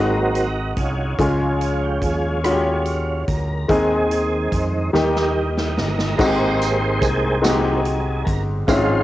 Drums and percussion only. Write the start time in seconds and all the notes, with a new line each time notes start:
0.35 closed hi-hat
0.77 kick, closed hi-hat
1.19 kick, closed hi-hat
1.61 closed hi-hat
2.02 kick, closed hi-hat
2.44 cross-stick, closed hi-hat
2.85 closed hi-hat
3.28 kick, closed hi-hat
3.69 kick, closed hi-hat
4.11 closed hi-hat
4.52 kick, cross-stick, closed hi-hat
4.95 snare
5.16 snare
5.57 snare
5.78 snare
5.99 snare
6.19 kick, crash, tambourine
6.61 closed hi-hat, tambourine
7.02 kick, closed hi-hat, tambourine
7.44 snare, closed hi-hat, tambourine
7.85 closed hi-hat
8.27 kick, closed hi-hat
8.68 kick, closed hi-hat, tambourine